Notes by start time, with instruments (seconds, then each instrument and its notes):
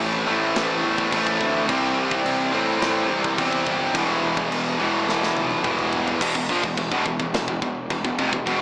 Already playing: distorted electric guitar A2 E3 A3 C4 E4
0.00 picked electric bass A1
0.27 picked electric bass A1, distorted electric guitar A2 E3 A3 C4 E4
0.56 picked electric bass A1, snare, crash
0.84 picked electric bass E2
0.98 kick
1.11 picked electric bass A1, distorted electric guitar A2 E3 A3, kick, crash
1.27 kick
1.40 picked electric bass D2, kick
1.67 picked electric bass C2, distorted electric guitar C3 E3 G3 C4, kick, crash
1.71 distorted electric guitar E4
2.11 kick
2.25 picked electric bass C2, crash
2.54 picked electric bass A2, distorted electric guitar C3 E3 G3 C4 E4
2.81 picked electric bass A2, snare, crash
3.10 picked electric bass C2
3.24 kick
3.38 picked electric bass E2, distorted electric guitar C3 G3 C4, kick, crash
3.52 kick
3.67 picked electric bass G1, kick
3.94 picked electric bass E1, distorted electric guitar E2 B2 E3 G3 B3, kick, crash
3.98 distorted electric guitar E3 E4
4.24 picked electric bass E1
4.37 kick
4.52 picked electric bass E1, crash
4.78 picked electric bass E1, distorted electric guitar E2 B2 E3 G3 B3 E4
4.83 distorted electric guitar E3
5.07 picked electric bass E1, snare
5.23 snare
5.36 picked electric bass B1, high tom
5.51 high tom
5.62 picked electric bass E1, distorted electric guitar E2 B2, kick, mid tom
5.67 distorted electric guitar E3
5.79 mid tom
5.93 picked electric bass E1, floor tom
6.08 floor tom
6.21 picked electric bass E1, distorted electric guitar E2 B2, kick, crash, china
6.35 picked electric bass E1, distorted electric guitar E2 B2, kick
6.49 picked electric bass A#1, distorted electric guitar A#2 F3, kick
6.63 picked electric bass E1, distorted electric guitar E2 B2, kick
6.77 picked electric bass E1, distorted electric guitar E2 B2, kick, china
6.91 picked electric bass E1, distorted electric guitar E2 B2, kick
7.05 picked electric bass E1, distorted electric guitar E2 B2, kick
7.19 picked electric bass E1, distorted electric guitar E2 B2, kick
7.34 picked electric bass E1, distorted electric guitar E2 B2, snare, china
7.48 picked electric bass E1, distorted electric guitar E2 B2, kick
7.62 picked electric bass E1, distorted electric guitar E2 B2, kick
7.90 picked electric bass E1, distorted electric guitar E2 B2, kick, china
8.05 picked electric bass E1, distorted electric guitar E2 B2, kick
8.19 picked electric bass F1, distorted electric guitar F2 C3, kick
8.33 picked electric bass E1, distorted electric guitar E2 B2, kick
8.46 picked electric bass E1, distorted electric guitar E2 B2, kick, china